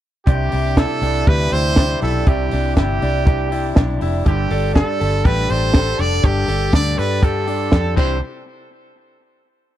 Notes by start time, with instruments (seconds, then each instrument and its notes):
0.26 fingered electric bass C2, clean electric guitar C3 G3 D4 E4 G4, trumpet G4, kick, closed hi-hat
0.51 fingered electric bass C2, clean electric guitar D4 E4 G4, open hi-hat
0.75 clean electric guitar G3 D4 E4 G4, trumpet A4, kick, snare, closed hi-hat
1.02 fingered electric bass C2, clean electric guitar D4 E4 G4, open hi-hat
1.27 fingered electric bass D2, clean electric guitar C3 G3 D4 E4 G4, trumpet B4, kick, closed hi-hat
1.50 fingered electric bass D2, clean electric guitar D4 E4 G4, trumpet C5, open hi-hat
1.76 clean electric guitar G3 D4 E4 G4, kick, snare, closed hi-hat
2.01 fingered electric bass B1, clean electric guitar D4 E4 G4, trumpet A4, open hi-hat
2.27 fingered electric bass C2, clean electric guitar C3 G3 D4 E4 G4, trumpet G4, kick, closed hi-hat
2.50 fingered electric bass C2, clean electric guitar D4 E4 G4, open hi-hat
2.75 fingered electric bass G1, clean electric guitar G3 D4 E4 G4, trumpet G4, kick, snare, closed hi-hat
3.00 fingered electric bass C2, clean electric guitar D4 E4 G4, open hi-hat
3.24 clean electric guitar C3 G3 D4 E4 G4, kick, closed hi-hat
3.49 clean electric guitar D4 E4 G4, open hi-hat
3.74 fingered electric bass B1, clean electric guitar G3 D4 E4 G4, kick, snare, closed hi-hat
3.99 fingered electric bass F1, clean electric guitar D4 E4 G4, open hi-hat
4.25 fingered electric bass G1, clean electric guitar G2 D3 G3 D4 G4 A4, trumpet G4, kick, closed hi-hat
4.49 fingered electric bass G1, clean electric guitar G3 D4 G4 A4, open hi-hat
4.72 clean electric guitar G3 D4 G4 A4, trumpet A4, kick, snare, closed hi-hat
4.99 fingered electric bass G1, clean electric guitar G3 D4 G4 A4, open hi-hat
5.24 fingered electric bass A1, clean electric guitar G2 D3 G3 D4 G4 A4, trumpet B4, kick, closed hi-hat
5.50 fingered electric bass A1, clean electric guitar G3 D4 G4 A4, trumpet C5, open hi-hat
5.74 clean electric guitar G3 D4 G4 A4, kick, snare, closed hi-hat
5.98 fingered electric bass F1, clean electric guitar G3 D4 G4 A4, trumpet D5, open hi-hat
6.23 fingered electric bass G1, clean electric guitar G2 D3 G3 D4 G4 A4, trumpet G4, kick, closed hi-hat
6.47 fingered electric bass G1, clean electric guitar G3 D4 G4 A4, open hi-hat
6.72 fingered electric bass D2, clean electric guitar G3 D4 G4 A4, trumpet D5, kick, snare, closed hi-hat
6.97 fingered electric bass G2, clean electric guitar G3 D4 G4 A4, trumpet B4, open hi-hat
7.22 clean electric guitar G2 D3 G3 D4 G4 A4, trumpet A4, kick, closed hi-hat
7.46 clean electric guitar G3 D4 G4 A4, open hi-hat
7.70 fingered electric bass F2, clean electric guitar G3 D4 G4 A4, kick, snare, closed hi-hat
7.95 fingered electric bass C2, clean electric guitar C3 E3 G3 C4 D4 E4 G4, trumpet C5, kick, crash